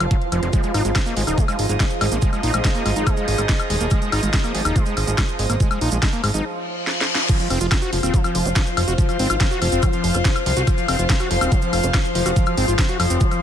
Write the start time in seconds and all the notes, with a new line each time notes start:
Already playing: F3 F4 C5 F5
0.00 F1 F3, closed hi-hat, high woodblock
0.11 F#3, kick, closed hi-hat
0.22 closed hi-hat
0.32 F1 F3, closed hi-hat, high woodblock
0.43 F1 F3, closed hi-hat, zap
0.53 G#3 D#4, kick, closed hi-hat, cabasa
0.63 G#3, closed hi-hat, cabasa
0.74 G#1 D#4, open hi-hat, high woodblock
0.85 G#1 G#3, closed hi-hat, cabasa
0.95 G#3 D#5, kick, snare, closed hi-hat, cabasa, high woodblock
1.05 A#3 G#4, closed hi-hat, cabasa
1.17 G#1 G#3, open hi-hat
1.27 D#1 D#4, closed hi-hat, cabasa, high woodblock
1.38 G#3, kick, closed hi-hat, cabasa
1.48 G#3, closed hi-hat, cabasa, high woodblock
1.59 G#1, open hi-hat
1.69 G#1 G#3, closed hi-hat, cabasa
1.80 G#3, kick, snare, closed hi-hat, cabasa, high woodblock
1.90 closed hi-hat, cabasa
2.01 G#1 G#3, open hi-hat, high woodblock
2.12 G#1 A#3, closed hi-hat, cabasa
2.22 G#3, kick, closed hi-hat, cabasa
2.33 G#3, closed hi-hat, cabasa, high woodblock
2.43 A#1 D#4, open hi-hat
2.54 A#1 G#3, closed hi-hat, cabasa, high woodblock
2.64 G#3, kick, snare, closed hi-hat, cabasa
2.75 A#3, closed hi-hat, cabasa
2.86 G#1 G#3, open hi-hat, high woodblock
2.96 G#1 D#4, closed hi-hat, cabasa
3.07 G#3, kick, closed hi-hat, cabasa, high woodblock
3.17 G#3, closed hi-hat, cabasa
3.28 G#1, open hi-hat
3.38 G#1 G#3, closed hi-hat, cabasa, high woodblock
3.49 G#3, kick, snare, closed hi-hat, cabasa
3.59 closed hi-hat, cabasa, high woodblock
3.70 D#1 G#3, open hi-hat
3.81 D#1 A#3, closed hi-hat, cabasa
3.90 G#3, kick, closed hi-hat, cabasa, high woodblock
4.02 G#3, closed hi-hat, cabasa
4.12 G#1 D#4, open hi-hat, high woodblock
4.23 G#1 G#3, closed hi-hat, cabasa
4.33 G#3, kick, snare, closed hi-hat, cabasa
4.44 A#3, closed hi-hat, cabasa, high woodblock
4.55 G#1 G#3, open hi-hat
4.65 D#1 D#4, closed hi-hat, cabasa, high woodblock
4.76 G#3, kick, closed hi-hat, cabasa
4.86 G#3, closed hi-hat, cabasa
4.97 G#1, open hi-hat, high woodblock
5.07 G#1 G#3, closed hi-hat, cabasa
5.18 G#3, kick, snare, closed hi-hat, cabasa, high woodblock
5.29 closed hi-hat, cabasa
5.39 G#1 G#3, open hi-hat
5.50 G#1 A#3, closed hi-hat, cabasa, high woodblock
5.60 G#3, kick, closed hi-hat, cabasa
5.71 G#3, closed hi-hat, cabasa, high woodblock
5.81 A#1 D#4, open hi-hat
5.91 A#1 G#3, closed hi-hat, cabasa
6.02 G#3, kick, snare, closed hi-hat, cabasa, high woodblock
6.13 A#3, closed hi-hat, cabasa
6.24 G#1 G#3, open hi-hat, high woodblock
6.34 G#1 D#4, closed hi-hat, cabasa
6.45 reverse cymbal
6.87 snare
7.01 snare
7.15 snare, zap
7.29 F3 F4, kick, closed hi-hat, crash, cabasa
7.39 F3, closed hi-hat, cabasa
7.50 F1 C4, open hi-hat, high woodblock
7.61 F1 F4, closed hi-hat, cabasa
7.71 F3, kick, snare, closed hi-hat, cabasa, high woodblock
7.82 F#4 C5, closed hi-hat, cabasa
7.91 F1 F3 F5, open hi-hat
8.03 D#1 C4, closed hi-hat, cabasa, high woodblock
8.14 F3, kick, closed hi-hat, cabasa
8.24 F3, closed hi-hat, cabasa, high woodblock
8.35 F1, open hi-hat
8.45 F1 F4, closed hi-hat, cabasa
8.55 F3, kick, snare, closed hi-hat, cabasa, high woodblock
8.67 closed hi-hat, cabasa
8.77 F1 F3, open hi-hat, high woodblock
8.88 F1 F#4, closed hi-hat, cabasa
8.98 F3, kick, closed hi-hat, cabasa
9.09 F3, closed hi-hat, cabasa, high woodblock
9.19 G#1 C4, open hi-hat
9.30 G#1 F4, closed hi-hat, cabasa, high woodblock
9.40 F3, kick, snare, closed hi-hat, cabasa
9.51 F#4, closed hi-hat, cabasa
9.62 F1 F3, open hi-hat, high woodblock
9.72 F1 C4, closed hi-hat, cabasa
9.82 F3, kick, closed hi-hat, cabasa, high woodblock
9.93 F3, closed hi-hat, cabasa
10.04 F1, open hi-hat
10.14 F1 F4, closed hi-hat, cabasa, high woodblock
10.25 F3, kick, snare, closed hi-hat, cabasa
10.36 closed hi-hat, cabasa, high woodblock
10.46 C2 F3, open hi-hat
10.56 C2 F#4, closed hi-hat, cabasa
10.67 F3, kick, closed hi-hat, cabasa, high woodblock
10.78 F3, closed hi-hat, cabasa
10.88 F1 C4, open hi-hat, high woodblock
10.99 F1 F4, closed hi-hat, cabasa
11.09 F3, kick, snare, closed hi-hat, cabasa
11.20 F#4, closed hi-hat, cabasa, high woodblock
11.31 F1 F3, open hi-hat
11.41 D#1 C4, closed hi-hat, cabasa, high woodblock
11.52 F3, kick, closed hi-hat, cabasa
11.62 F3, closed hi-hat, cabasa
11.73 F1, open hi-hat, high woodblock
11.83 F1 F4, closed hi-hat, cabasa
11.94 F3, kick, snare, closed hi-hat, cabasa, high woodblock
12.05 closed hi-hat, cabasa
12.15 F1 F3, open hi-hat
12.26 F1 F#4, closed hi-hat, cabasa, high woodblock
12.36 F3, kick, closed hi-hat, cabasa
12.46 F3, closed hi-hat, cabasa, high woodblock
12.57 G#1 C4, open hi-hat
12.68 G#1 F4, closed hi-hat, cabasa
12.79 F3, kick, snare, closed hi-hat, cabasa, high woodblock
12.88 F#4, closed hi-hat, cabasa
13.00 F1 F3, open hi-hat, high woodblock
13.10 F1 C4, closed hi-hat, cabasa
13.20 F3, kick, closed hi-hat, cabasa
13.31 F3, closed hi-hat, cabasa, high woodblock